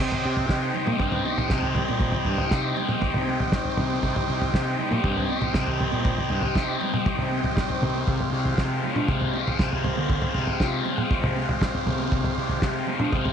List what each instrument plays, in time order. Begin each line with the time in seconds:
Already playing: transistor combo organ G4 C5 D#5 G5
0.01 distorted electric guitar C3
0.12 floor tom
0.25 fingered electric bass C3, distorted electric guitar G4
0.37 floor tom
0.49 fingered electric bass C3, distorted electric guitar D#4, kick, snare
0.75 distorted electric guitar G3, high conga, low conga
0.87 fingered electric bass A#3, mid tom, high conga
0.99 fingered electric bass G2, distorted electric guitar C4, kick, floor tom
1.12 floor tom
1.26 distorted electric guitar D#4, high conga
1.38 floor tom, mid tom
1.49 fingered electric bass C3, distorted electric guitar C4, kick, snare, floor tom
1.62 floor tom
1.75 distorted electric guitar G3, floor tom, low conga
1.88 fingered electric bass A#2, high conga
1.99 distorted electric guitar C3, kick, floor tom
2.12 floor tom
2.25 fingered electric bass G2, distorted electric guitar G4, floor tom
2.38 floor tom
2.51 fingered electric bass C3, distorted electric guitar D#4, kick, snare
2.77 distorted electric guitar G3, high conga, low conga
2.89 mid tom, high conga
3.01 distorted electric guitar C4, kick, floor tom
3.14 fingered electric bass C3, floor tom
3.27 distorted electric guitar D#4, high conga
3.40 floor tom, mid tom
3.52 distorted electric guitar C4, kick, snare, floor tom, mid tom
3.65 floor tom
3.77 fingered electric bass C3, distorted electric guitar G3, floor tom, mid tom, low conga
3.90 high conga
4.03 fingered electric bass C3, distorted electric guitar C3, kick, floor tom
4.16 floor tom
4.29 fingered electric bass C3, distorted electric guitar G4
4.42 floor tom
4.54 fingered electric bass C3, distorted electric guitar D#4, kick, snare
4.79 distorted electric guitar G3, high conga, low conga
4.91 fingered electric bass A#3, mid tom, high conga
5.04 fingered electric bass G2, distorted electric guitar C4, kick, floor tom
5.17 floor tom
5.29 distorted electric guitar D#4, high conga
5.42 floor tom, mid tom
5.54 fingered electric bass C3, distorted electric guitar C4, kick, snare, floor tom
5.67 floor tom
5.79 distorted electric guitar G3, floor tom, low conga
5.92 fingered electric bass A#2, high conga
6.05 distorted electric guitar C3, kick, floor tom
6.18 floor tom
6.30 fingered electric bass G2, distorted electric guitar G4, floor tom
6.42 floor tom
6.55 fingered electric bass C3, distorted electric guitar D#4, kick, snare
6.81 distorted electric guitar G3, low conga
6.94 mid tom, high conga
7.06 distorted electric guitar C4, kick, floor tom
7.19 fingered electric bass C3, floor tom
7.31 distorted electric guitar D#4, high conga
7.44 floor tom, mid tom
7.57 distorted electric guitar C4, kick, snare, floor tom, mid tom
7.70 floor tom
7.81 fingered electric bass C3, distorted electric guitar G3, floor tom, mid tom, low conga
7.95 high conga
8.05 fingered electric bass C3, distorted electric guitar C3, transistor combo organ G#3 F5, kick, floor tom
8.20 floor tom
8.32 fingered electric bass C3, distorted electric guitar G4
8.45 floor tom
8.58 fingered electric bass C3, distorted electric guitar F4, kick, snare
8.84 distorted electric guitar G#3, high conga, low conga
8.96 fingered electric bass D4, mid tom, high conga
9.08 fingered electric bass C3, distorted electric guitar C4, kick, floor tom
9.21 floor tom
9.34 distorted electric guitar F4, high conga
9.48 floor tom, mid tom
9.59 fingered electric bass C3, distorted electric guitar C4, kick, snare, floor tom
9.73 floor tom
9.83 distorted electric guitar G#3, floor tom, low conga
9.97 fingered electric bass D3, high conga
10.10 distorted electric guitar C3, kick, floor tom
10.22 floor tom
10.35 fingered electric bass C3, distorted electric guitar G4, floor tom
10.47 floor tom
10.60 fingered electric bass C3, distorted electric guitar F4, kick, snare
10.86 distorted electric guitar G#3, high conga, low conga
10.98 mid tom, high conga
11.11 distorted electric guitar C4, kick, floor tom
11.24 fingered electric bass C3, floor tom
11.36 distorted electric guitar F4, high conga
11.49 floor tom, mid tom
11.62 distorted electric guitar C4, kick, snare, floor tom, mid tom
11.75 floor tom
11.86 fingered electric bass C3, distorted electric guitar G#3, floor tom, mid tom, low conga
11.99 high conga
12.12 fingered electric bass C3, distorted electric guitar C3, kick, floor tom
12.24 floor tom
12.38 fingered electric bass C3, distorted electric guitar G4
12.49 floor tom
12.62 fingered electric bass C3, distorted electric guitar F4, kick, snare
12.87 distorted electric guitar G#3, high conga, low conga
13.00 fingered electric bass D4, mid tom, high conga
13.12 fingered electric bass C3, distorted electric guitar C4, kick, floor tom
13.25 floor tom